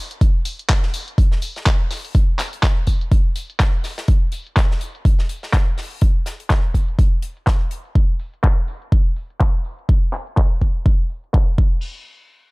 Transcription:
0.11 closed hi-hat medium
0.21 kick loud
0.21 closed hi-hat medium
0.45 closed hi-hat medium
0.45 open hi-hat loud
0.59 closed hi-hat soft
0.69 kick loud
0.69 snare loud
0.69 clap loud
0.69 closed hi-hat medium
0.83 snare soft
0.94 closed hi-hat medium
0.94 open hi-hat loud
1.08 closed hi-hat medium
1.18 kick loud
1.18 closed hi-hat medium
1.32 snare soft
1.42 closed hi-hat medium
1.42 open hi-hat loud
1.56 snare medium
1.56 closed hi-hat soft
1.66 kick loud
1.66 snare loud
1.66 clap loud
1.66 closed hi-hat medium
1.91 snare soft
1.91 open hi-hat loud
1.91 open hi-hat medium
2.05 closed hi-hat soft
2.15 kick loud
2.15 closed hi-hat medium
2.39 snare medium
2.39 clap medium
2.39 closed hi-hat medium
2.39 open hi-hat loud
2.53 closed hi-hat soft
2.63 kick loud
2.63 snare loud
2.63 clap loud
2.63 closed hi-hat medium
2.87 kick medium
2.87 closed hi-hat medium
2.87 open hi-hat loud
3.01 closed hi-hat medium
3.12 kick loud
3.12 closed hi-hat medium
3.36 closed hi-hat medium
3.36 open hi-hat loud
3.50 closed hi-hat medium
3.60 kick loud
3.60 snare loud
3.60 clap loud
3.60 closed hi-hat medium
3.84 snare soft
3.84 open hi-hat medium
3.98 snare loud
3.98 closed hi-hat soft
3.98 closed hi-hat medium
4.08 kick loud
4.08 closed hi-hat medium
4.32 closed hi-hat medium
4.32 open hi-hat loud
4.47 closed hi-hat soft
4.57 kick loud
4.57 snare loud
4.57 clap loud
4.57 closed hi-hat medium
4.71 snare soft
4.81 closed hi-hat medium
4.81 open hi-hat medium
4.95 closed hi-hat soft
5.05 kick loud
5.05 closed hi-hat medium
5.19 snare soft
5.29 closed hi-hat medium
5.29 open hi-hat loud
5.43 snare medium
5.43 closed hi-hat medium
5.53 kick loud
5.53 snare loud
5.53 clap loud
5.53 closed hi-hat medium
5.78 snare soft
5.78 open hi-hat medium
5.92 closed hi-hat soft
6.01 kick loud
6.01 closed hi-hat medium
6.26 snare medium
6.26 closed hi-hat medium
6.26 open hi-hat loud
6.40 closed hi-hat soft
6.40 closed hi-hat medium
6.50 kick loud
6.50 snare loud
6.50 clap loud
6.50 closed hi-hat medium
6.74 kick medium
6.74 closed hi-hat medium
6.74 open hi-hat medium
6.88 closed hi-hat medium
6.99 kick loud
6.99 closed hi-hat medium
7.22 closed hi-hat medium
7.22 open hi-hat loud
7.37 closed hi-hat soft
7.47 kick loud
7.47 snare loud
7.47 clap loud
7.47 closed hi-hat medium
7.71 closed hi-hat medium
7.71 open hi-hat medium
7.85 closed hi-hat soft
7.95 kick loud
8.20 open hi-hat loud
8.34 closed hi-hat medium
8.44 kick loud
8.44 clap loud
8.68 open hi-hat medium
8.82 closed hi-hat medium
8.92 kick loud
9.16 open hi-hat loud
9.30 closed hi-hat medium
9.41 kick loud
9.41 clap loud
9.65 open hi-hat medium
9.79 closed hi-hat soft
9.89 kick loud
10.13 clap medium
10.13 open hi-hat medium
10.27 closed hi-hat medium
10.37 kick loud
10.37 clap loud
10.62 kick medium
10.62 open hi-hat medium
10.75 closed hi-hat medium
10.86 kick loud
11.10 open hi-hat loud
11.24 closed hi-hat medium
11.34 kick loud
11.34 clap loud
11.58 kick loud
11.58 crash medium

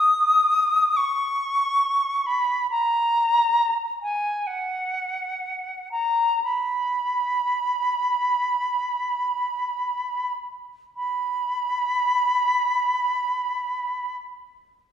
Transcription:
0.00 0.98 D#6 medium
0.96 2.28 C#6 medium
2.26 2.70 B5 medium
2.70 3.73 A#5 medium
4.02 4.48 G#5 medium
4.46 5.91 F#5 medium
5.91 6.42 A#5 medium
6.44 10.33 B5 medium
10.96 14.16 B5 medium

